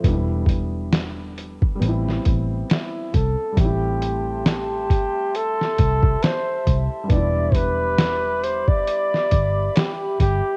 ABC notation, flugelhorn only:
X:1
M:4/4
L:1/16
Q:"Swing 16ths" 1/4=68
K:Am
V:1 name="Flugelhorn"
z12 E2 A2 | G4 G4 A4 c3 z | d2 B4 c d4- d G2 G2 |]